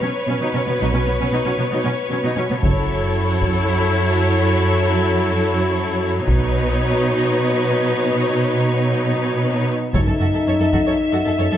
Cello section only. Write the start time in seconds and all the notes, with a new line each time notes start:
0.01 B2
0.27 B2
0.40 B2
0.53 B2
0.66 B2
0.79 B2
0.92 B2
1.05 B2
1.19 B2
1.31 B2
1.45 B2
1.58 B2
1.71 B2
1.84 B2
2.11 B2
2.23 B2
2.36 B2
2.50 B2
2.64 F#2
6.28 B2
9.94 F#2
10.06 F#2
10.20 F#2
10.33 F#2
10.46 F#2
10.59 F#2
10.73 F#2
10.86 F#2
11.12 F#2
11.25 F#2
11.38 F#2
11.51 F#2